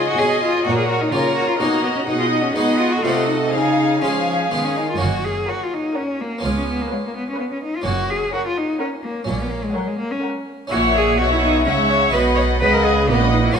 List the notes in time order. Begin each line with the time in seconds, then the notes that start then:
Already playing: C#3 G#4 D#5 G#5
0.09 F#4
0.18 B2 G#3 C#4 G#4
0.42 F4
0.65 A#2 F#4 A#4 C#5 F#5
0.77 G#4
0.88 F#4
1.01 D#4
1.11 C#3 A#3 C#4 F4 A#4 C#5 A#5
1.35 F#4
1.48 F4
1.59 B2 A#3 C#4 D#4 F#4 D#5 A#5
1.83 B3
1.96 C#4
2.06 B2 D#4 G#4 D#5 F#5
2.20 F4
2.30 D#4
2.43 C#4
2.54 G#3 B3 D#4 F#4 G#4 D#5 F#5
2.78 F4
2.92 F#4
3.02 C3 A3 D#4 F4 F#4 A4 D#5 F#5
3.27 D#4
3.52 C#3 D#4 G#4 F5 G#5
4.01 F3 G#3 C#4 F4 G#4 F5 G#5
4.51 D#3 G#3 B3 F4 G#4
4.64 C#4
4.76 D#4
4.90 F4
4.95 F#1 F#2 A#3 C#4 F#4
4.99 F#2 F#4
5.25 G#4
5.47 F#4 A#4 C#5 F#5
5.63 F4
5.73 D#4
5.95 C#4 A#4 C#5 F#5
6.21 A#3
6.38 B3 C#4 F4
6.43 C#2 G#3
6.57 C#4
6.69 B3
6.81 A#3
6.91 G#3 B4 C#5 F5
7.06 A#3
7.16 B3
7.29 C#4
7.37 B3 B4 C#5 F5
7.53 C#4
7.64 D#4
7.76 F4
7.82 F#2 A#3 C#4
7.86 F#1 F#2 F#4
8.10 G#4
8.33 F#4 A#4 C#5 F#5
8.47 F4
8.58 D#4
8.80 C#4 A#4 C#5 F#5
9.04 A#3
9.24 A#1 A#2 F#3 C#4
9.41 B3
9.51 A#3
9.64 G#3
9.74 F#3 A#4 C#5 F#5
9.87 G#3
9.99 A#3
10.11 C#4
10.23 A#4 C#5 F#5
10.67 A#1 A#2 C#4 E4 C#5 E5 F#5
10.71 F#4
10.95 G#4
11.17 B1 B2 F#4 C#5 E5 F#5
11.31 E4
11.42 D#4
11.65 C#2 C#3 C#4 C#5 E5 F#5
11.89 C#5
12.10 B1 B2 B3 D#4 B4 F#5
12.14 D#5
12.35 C#5
12.60 C#2 C#3 B4 D#5 F#5
12.73 A#4
12.85 G#4
13.08 A#1 A#2 B3 B4 D#5 F#5
13.20 C#4
13.32 D#4
13.44 E4
13.51 A#3 C#4 F#4
13.55 F#1 F#2 F#4 A#4 C#5 F#5